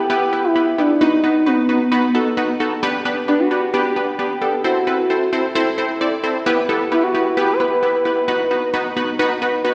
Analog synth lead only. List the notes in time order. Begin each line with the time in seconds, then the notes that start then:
Already playing: G4
0.11 G4
0.44 E4
0.78 D4
1.01 D#4
1.12 D#4
1.47 B3
3.28 D4
3.39 F#4
3.73 G4
4.19 G4
4.65 F#4
6.93 E4
7.04 F#4
7.38 G4
7.53 C5
7.60 B4
8.06 B4